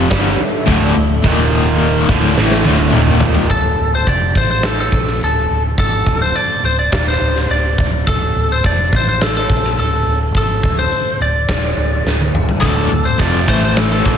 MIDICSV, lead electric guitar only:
0, 0, Header, 1, 2, 480
1, 0, Start_track
1, 0, Key_signature, -1, "minor"
1, 0, Tempo, 569260
1, 1041, Time_signature, 4, 2, 24, 8
1, 11953, End_track
2, 0, Start_track
2, 0, Title_t, "Lead electric guitar"
2, 0, Program_c, 0, 29
2, 2958, Note_on_c, 0, 69, 86
2, 3324, Note_off_c, 0, 69, 0
2, 3330, Note_on_c, 0, 72, 80
2, 3440, Note_on_c, 0, 74, 87
2, 3443, Note_off_c, 0, 72, 0
2, 3681, Note_off_c, 0, 74, 0
2, 3689, Note_on_c, 0, 72, 78
2, 3791, Note_off_c, 0, 72, 0
2, 3801, Note_on_c, 0, 72, 85
2, 3925, Note_off_c, 0, 72, 0
2, 3925, Note_on_c, 0, 69, 86
2, 4040, Note_off_c, 0, 69, 0
2, 4051, Note_on_c, 0, 69, 78
2, 4376, Note_off_c, 0, 69, 0
2, 4417, Note_on_c, 0, 69, 76
2, 4739, Note_off_c, 0, 69, 0
2, 4885, Note_on_c, 0, 69, 86
2, 5239, Note_off_c, 0, 69, 0
2, 5242, Note_on_c, 0, 72, 77
2, 5359, Note_off_c, 0, 72, 0
2, 5359, Note_on_c, 0, 74, 92
2, 5595, Note_off_c, 0, 74, 0
2, 5610, Note_on_c, 0, 72, 79
2, 5722, Note_off_c, 0, 72, 0
2, 5725, Note_on_c, 0, 74, 90
2, 5827, Note_off_c, 0, 74, 0
2, 5838, Note_on_c, 0, 74, 94
2, 5958, Note_off_c, 0, 74, 0
2, 5971, Note_on_c, 0, 72, 78
2, 6329, Note_off_c, 0, 72, 0
2, 6332, Note_on_c, 0, 74, 95
2, 6659, Note_off_c, 0, 74, 0
2, 6813, Note_on_c, 0, 69, 87
2, 7175, Note_off_c, 0, 69, 0
2, 7184, Note_on_c, 0, 72, 74
2, 7282, Note_off_c, 0, 72, 0
2, 7301, Note_on_c, 0, 74, 90
2, 7536, Note_off_c, 0, 74, 0
2, 7557, Note_on_c, 0, 72, 81
2, 7650, Note_off_c, 0, 72, 0
2, 7662, Note_on_c, 0, 72, 81
2, 7773, Note_off_c, 0, 72, 0
2, 7779, Note_on_c, 0, 69, 82
2, 7889, Note_off_c, 0, 69, 0
2, 7900, Note_on_c, 0, 69, 79
2, 8248, Note_off_c, 0, 69, 0
2, 8259, Note_on_c, 0, 69, 77
2, 8585, Note_off_c, 0, 69, 0
2, 8750, Note_on_c, 0, 69, 77
2, 9095, Note_on_c, 0, 72, 81
2, 9106, Note_off_c, 0, 69, 0
2, 9456, Note_off_c, 0, 72, 0
2, 9460, Note_on_c, 0, 74, 84
2, 10139, Note_off_c, 0, 74, 0
2, 10634, Note_on_c, 0, 69, 87
2, 11006, Note_on_c, 0, 72, 86
2, 11011, Note_off_c, 0, 69, 0
2, 11124, Note_off_c, 0, 72, 0
2, 11124, Note_on_c, 0, 74, 87
2, 11373, Note_off_c, 0, 74, 0
2, 11375, Note_on_c, 0, 72, 85
2, 11483, Note_off_c, 0, 72, 0
2, 11507, Note_on_c, 0, 72, 82
2, 11617, Note_off_c, 0, 72, 0
2, 11617, Note_on_c, 0, 69, 93
2, 11732, Note_off_c, 0, 69, 0
2, 11741, Note_on_c, 0, 69, 77
2, 11953, Note_off_c, 0, 69, 0
2, 11953, End_track
0, 0, End_of_file